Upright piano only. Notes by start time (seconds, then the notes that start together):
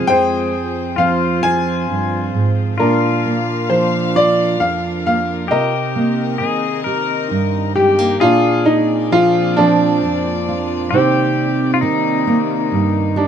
0.07 C5 G5
0.98 F5
1.43 G#5
2.80 D4 A#4
3.70 C5
4.16 D5
4.60 F5
5.07 F5
5.51 A#4 D#5
7.76 G4
8.21 D4 F4
8.66 D#4
9.12 F4
9.57 F3 D4
10.94 D#3 C4
13.17 D4